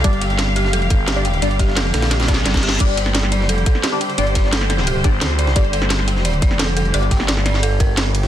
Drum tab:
CC |------------------------------------------------|------------------------------------------------|x-----------------------------------------------|------------------------------------------------|
RD |x--x--x--x--x-----x-----x--x--x-----x-----x--x--|x--x--x-----x-----x--x--x--x--x-----x--x-----x--|x--x--x--x--x-----x-----x--x--x-----x-----x--x--|x--x--x-----x-----x-----x-----x-----x-----x-----|
HH |x-----x-----x-----x-----x-----x-----x-----x-----|x-----x-----x-----x-----x-----x-----x-----x-----|x-----x-----x-----x-----x-----x-----x-----x-----|x-----x-----x-----x-----x-----x-----x-----x-----|
SD |------------o--------o--------------o-----------|------o--o--o--o--o--o--o--oo-o-oo--o--oo-o-o---|---------o--o--o-----o-----------o--o-----------|------o--o--o--o--o--o--------------o--------o--|
BD |o-----------------------------o-----------------|------o-----------------------o--------o--------|o-----------------------------o-----------------|------o-----------------------o-----------------|

CC |------------------------------------------------|------------------------------------------------|
RD |x--x--x--x--x-----x-----x--x--x-----x-----x--x--|x--x--x-----x-----x-----x-----x-----x-----x-----|
HH |x-----x-----x-----x-----x-----x-----x-----x-----|x-----x-----x-----x-----x-----x-----x-----x-----|
SD |---------o--o--o-----o-----------o--o-----------|------o--o--o--o--o--o--------------o--------o--|
BD |o-----------------------------o-----------------|------o-----------------------o-----------------|